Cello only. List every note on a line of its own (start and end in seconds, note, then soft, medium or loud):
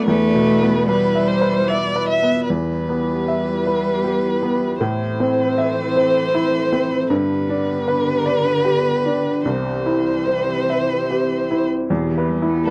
0.07 0.89 A3 medium
0.88 2.09 G3 medium
2.49 4.76 G3 soft
4.80 7.06 E3 medium
7.10 9.41 D3 medium
9.44 11.65 E3 soft
11.90 12.11 B2 soft
12.09 12.30 E3 soft
12.28 12.50 G3 soft
12.48 12.67 B3 soft
12.66 12.70 G3 soft